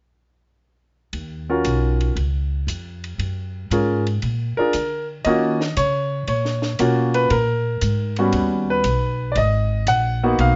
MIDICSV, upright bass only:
0, 0, Header, 1, 3, 480
1, 0, Start_track
1, 0, Key_signature, -6, "minor"
1, 0, Tempo, 514139
1, 1057, Time_signature, 4, 2, 24, 8
1, 9856, End_track
2, 0, Start_track
2, 0, Title_t, "Upright bass"
2, 0, Program_c, 0, 32
2, 1053, Note_on_c, 0, 39, 60
2, 1521, Note_off_c, 0, 39, 0
2, 1538, Note_on_c, 0, 35, 71
2, 2004, Note_off_c, 0, 35, 0
2, 2013, Note_on_c, 0, 37, 68
2, 2482, Note_off_c, 0, 37, 0
2, 2491, Note_on_c, 0, 41, 67
2, 2961, Note_off_c, 0, 41, 0
2, 2972, Note_on_c, 0, 42, 67
2, 3441, Note_off_c, 0, 42, 0
2, 3458, Note_on_c, 0, 44, 77
2, 3925, Note_off_c, 0, 44, 0
2, 3946, Note_on_c, 0, 46, 67
2, 4251, Note_off_c, 0, 46, 0
2, 4426, Note_on_c, 0, 50, 67
2, 4889, Note_off_c, 0, 50, 0
2, 4905, Note_on_c, 0, 51, 67
2, 5368, Note_off_c, 0, 51, 0
2, 5385, Note_on_c, 0, 49, 83
2, 5848, Note_off_c, 0, 49, 0
2, 5857, Note_on_c, 0, 46, 66
2, 6324, Note_off_c, 0, 46, 0
2, 6343, Note_on_c, 0, 47, 73
2, 6807, Note_off_c, 0, 47, 0
2, 6818, Note_on_c, 0, 46, 76
2, 7284, Note_off_c, 0, 46, 0
2, 7297, Note_on_c, 0, 44, 71
2, 7763, Note_off_c, 0, 44, 0
2, 7775, Note_on_c, 0, 39, 72
2, 8241, Note_off_c, 0, 39, 0
2, 8252, Note_on_c, 0, 35, 65
2, 8720, Note_off_c, 0, 35, 0
2, 8733, Note_on_c, 0, 32, 74
2, 9200, Note_off_c, 0, 32, 0
2, 9211, Note_on_c, 0, 34, 83
2, 9679, Note_off_c, 0, 34, 0
2, 9692, Note_on_c, 0, 35, 69
2, 9856, Note_off_c, 0, 35, 0
2, 9856, End_track
3, 0, Start_track
3, 0, Title_t, "Muted upright bass strokes"
3, 4280, Note_on_c, 9, 29, 30
3, 4374, Note_off_c, 9, 29, 0
3, 9856, End_track
0, 0, End_of_file